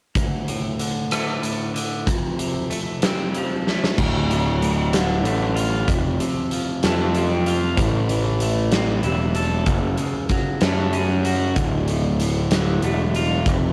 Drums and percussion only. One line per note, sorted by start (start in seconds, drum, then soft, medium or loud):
0.15 kick medium
0.15 closed hi-hat medium
0.48 closed hi-hat medium
0.80 closed hi-hat medium
1.11 cross-stick medium
1.11 closed hi-hat medium
1.43 closed hi-hat medium
1.76 closed hi-hat medium
2.07 kick medium
2.07 closed hi-hat medium
2.39 closed hi-hat medium
2.71 closed hi-hat medium
3.02 snare loud
3.02 closed hi-hat medium
3.35 closed hi-hat soft
3.67 snare soft
3.84 snare medium
3.98 kick medium
3.98 crash medium
4.31 closed hi-hat medium
4.62 closed hi-hat soft
4.93 snare medium
4.93 closed hi-hat medium
5.25 closed hi-hat medium
5.57 closed hi-hat medium
5.88 kick loud
5.88 closed hi-hat medium
6.20 closed hi-hat medium
6.51 closed hi-hat medium
6.83 snare medium
6.83 closed hi-hat medium
7.15 closed hi-hat medium
7.46 closed hi-hat medium
7.77 kick loud
7.77 closed hi-hat medium
8.09 closed hi-hat medium
8.40 closed hi-hat medium
8.72 snare loud
8.72 closed hi-hat medium
9.03 closed hi-hat medium
9.35 closed hi-hat soft
9.66 kick loud
9.66 closed hi-hat medium
9.97 closed hi-hat medium
10.29 kick medium
10.29 closed hi-hat medium
10.61 snare loud
10.61 closed hi-hat medium
10.93 closed hi-hat medium
11.25 closed hi-hat medium
11.56 kick medium
11.56 closed hi-hat medium
11.88 closed hi-hat medium
12.20 closed hi-hat medium
12.51 snare loud
12.51 closed hi-hat medium
12.82 closed hi-hat medium
13.14 closed hi-hat soft
13.46 kick loud
13.46 closed hi-hat medium